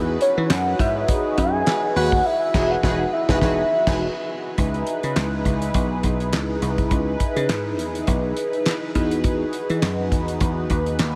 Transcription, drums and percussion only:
0.21 closed hi-hat
0.50 snare, clap, closed hi-hat
0.79 kick, closed hi-hat
1.08 kick, closed hi-hat
1.38 kick, closed hi-hat
1.66 snare, clap, closed hi-hat
1.97 open hi-hat
2.12 kick
2.54 kick, snare, crash
2.83 kick, snare
3.29 kick, snare
3.41 kick, snare
3.87 kick, snare, crash
4.58 kick, closed hi-hat
4.74 closed hi-hat
4.87 closed hi-hat
5.03 closed hi-hat
5.16 snare, clap, closed hi-hat
5.45 kick, closed hi-hat
5.62 closed hi-hat
5.74 kick, closed hi-hat
6.03 kick, closed hi-hat
6.20 closed hi-hat
6.33 snare, clap, closed hi-hat
6.62 closed hi-hat
6.78 kick, closed hi-hat
6.91 kick, closed hi-hat
7.20 kick, closed hi-hat
7.36 closed hi-hat
7.49 snare, clap, closed hi-hat
7.79 closed hi-hat
7.95 closed hi-hat
8.07 kick, closed hi-hat
8.37 closed hi-hat
8.53 closed hi-hat
8.66 snare, clap, closed hi-hat
8.95 kick, closed hi-hat
9.11 closed hi-hat
9.24 kick, closed hi-hat
9.53 closed hi-hat
9.70 closed hi-hat
9.82 snare, clap, closed hi-hat
10.12 kick, closed hi-hat
10.28 closed hi-hat
10.40 kick, closed hi-hat
10.70 kick, closed hi-hat
10.86 closed hi-hat
10.99 snare, clap, closed hi-hat

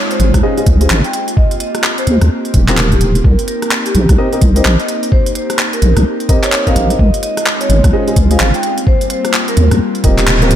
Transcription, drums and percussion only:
0.11 closed hi-hat
0.20 closed hi-hat
0.34 kick, cross-stick, closed hi-hat
0.58 closed hi-hat
0.66 kick, closed hi-hat
0.81 closed hi-hat
0.90 clap
1.04 closed hi-hat
1.13 closed hi-hat
1.28 closed hi-hat
1.37 kick
1.51 closed hi-hat
1.60 closed hi-hat
1.75 cross-stick, closed hi-hat
1.84 clap
1.98 closed hi-hat
2.07 closed hi-hat
2.21 cross-stick, closed hi-hat
2.45 closed hi-hat
2.54 kick, closed hi-hat
2.68 clap, closed hi-hat
2.77 clap
2.92 kick, closed hi-hat
3.01 closed hi-hat
3.15 closed hi-hat
3.24 kick
3.39 closed hi-hat
3.48 closed hi-hat
3.62 cross-stick, closed hi-hat
3.71 clap
3.86 closed hi-hat
3.95 closed hi-hat
4.09 kick, cross-stick, closed hi-hat
4.33 closed hi-hat
4.42 kick, closed hi-hat
4.56 closed hi-hat
4.65 clap
4.80 closed hi-hat
4.88 closed hi-hat
5.03 closed hi-hat
5.12 kick
5.26 closed hi-hat
5.35 closed hi-hat
5.50 cross-stick, closed hi-hat
5.59 clap
5.73 closed hi-hat
5.82 closed hi-hat
5.97 cross-stick, closed hi-hat
6.20 closed hi-hat
6.29 kick, closed hi-hat
6.43 clap, closed hi-hat
6.52 clap
6.67 kick, closed hi-hat
6.76 closed hi-hat
6.90 closed hi-hat
6.99 kick
7.14 closed hi-hat
7.23 closed hi-hat
7.37 cross-stick, closed hi-hat
7.46 clap
7.61 closed hi-hat
7.70 closed hi-hat
7.84 kick, cross-stick, closed hi-hat
8.08 closed hi-hat
8.16 kick, closed hi-hat
8.31 closed hi-hat
8.40 clap
8.54 closed hi-hat
8.63 closed hi-hat
8.78 closed hi-hat
8.87 kick
9.01 closed hi-hat
9.10 closed hi-hat
9.25 cross-stick, closed hi-hat
9.34 clap
9.48 closed hi-hat
9.57 closed hi-hat
9.71 cross-stick, closed hi-hat
9.95 closed hi-hat
10.04 kick, closed hi-hat
10.18 clap, closed hi-hat
10.27 clap
10.42 cross-stick, closed hi-hat
10.51 closed hi-hat

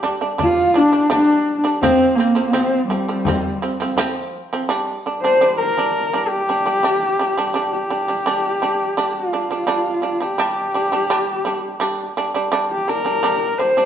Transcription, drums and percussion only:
0.04 frame drum
0.39 frame drum
0.93 frame drum
1.11 frame drum
1.82 frame drum
2.37 frame drum
2.54 frame drum
2.90 frame drum
3.25 frame drum
3.79 frame drum
3.97 frame drum

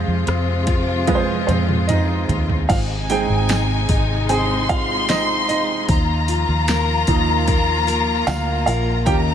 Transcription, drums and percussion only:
0.27 cross-stick, closed hi-hat
0.67 kick, closed hi-hat
0.88 cross-stick
1.07 kick, closed hi-hat, high tom
1.48 closed hi-hat, mid tom
1.68 mid tom
1.89 closed hi-hat, mid tom
2.29 closed hi-hat, floor tom
2.49 floor tom
2.69 kick, open hi-hat, crash
3.10 open hi-hat
3.49 snare, open hi-hat, tambourine
3.89 kick, open hi-hat
4.29 open hi-hat
4.69 kick, open hi-hat
5.09 snare, open hi-hat, tambourine
5.49 open hi-hat
5.89 kick, open hi-hat
6.28 open hi-hat
6.68 snare, open hi-hat, tambourine
7.07 kick, open hi-hat
7.48 kick, open hi-hat
7.88 open hi-hat
8.27 snare, open hi-hat, tambourine
8.67 open hi-hat
9.06 kick, open hi-hat

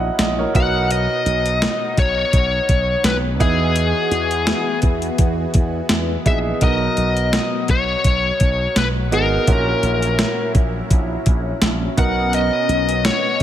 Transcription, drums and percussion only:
0.19 snare, closed hi-hat
0.55 kick, closed hi-hat
0.91 closed hi-hat
1.26 closed hi-hat
1.46 closed hi-hat
1.62 snare, closed hi-hat
1.97 kick, closed hi-hat
2.33 kick, closed hi-hat
2.69 kick, closed hi-hat
3.04 snare, closed hi-hat
3.40 kick, closed hi-hat
3.76 closed hi-hat
4.12 closed hi-hat
4.31 closed hi-hat
4.47 snare, closed hi-hat
4.82 kick, closed hi-hat
5.02 closed hi-hat
5.18 kick, closed hi-hat
5.54 kick, closed hi-hat
5.89 snare, closed hi-hat
6.26 kick, closed hi-hat
6.61 kick, closed hi-hat
6.97 closed hi-hat
7.17 closed hi-hat
7.33 snare, closed hi-hat
7.68 kick, closed hi-hat
8.04 kick, closed hi-hat
8.40 kick, closed hi-hat
8.76 snare, closed hi-hat
9.12 closed hi-hat
9.47 kick, closed hi-hat
9.83 closed hi-hat
10.03 closed hi-hat
10.19 snare, closed hi-hat
10.55 kick, closed hi-hat
10.91 kick, closed hi-hat
11.26 kick, closed hi-hat
11.62 snare, closed hi-hat
11.98 kick, closed hi-hat
12.33 closed hi-hat
12.69 closed hi-hat
12.89 closed hi-hat
13.05 snare, closed hi-hat

